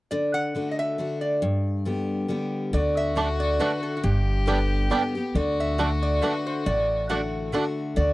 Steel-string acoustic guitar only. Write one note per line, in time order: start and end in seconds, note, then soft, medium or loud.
0.12 0.53 D3 medium
0.55 0.96 D3 medium
0.55 0.97 A3 medium
0.55 0.97 D4 medium
0.55 0.97 F#4 medium
0.98 1.40 D3 medium
0.98 1.40 A3 medium
0.98 1.41 D4 medium
0.98 1.41 F#4 medium
1.42 2.25 G2 medium
1.85 2.27 D3 medium
1.85 2.28 G3 medium
1.85 2.28 B3 medium
1.85 2.28 G4 medium
2.28 2.71 D3 medium
2.28 2.71 G3 medium
2.28 2.71 B3 medium
2.28 2.72 G4 medium
2.73 3.14 D3 medium
3.15 3.58 D3 medium
3.15 3.58 A3 medium
3.15 3.59 D4 medium
3.15 3.59 F#4 medium
3.59 4.02 D3 medium
3.59 4.02 A3 medium
3.59 4.02 D4 medium
3.59 4.03 F#4 medium
4.03 4.87 G2 medium
4.46 4.89 D3 medium
4.46 4.89 G3 medium
4.46 4.89 B3 medium
4.46 4.90 G4 medium
4.90 5.13 D3 medium
4.90 5.14 G3 medium
4.90 5.14 B3 medium
4.90 5.14 G4 medium
5.15 5.35 B3 medium
5.15 5.34 G4 medium
5.35 5.77 D3 medium
5.78 6.20 D3 medium
5.78 6.21 A3 medium
5.78 6.21 D4 medium
5.78 6.21 F#4 medium
6.22 6.64 D3 medium
6.22 6.64 A3 medium
6.22 6.65 D4 medium
6.22 6.65 F#4 medium
6.66 7.49 A2 medium
7.09 7.51 D3 medium
7.09 7.51 A3 medium
7.09 7.52 D4 medium
7.09 7.52 F#4 medium
7.52 7.94 D3 medium
7.52 7.95 A3 medium
7.52 7.95 D4 medium
7.52 7.96 F#4 medium
7.96 8.13 D3 medium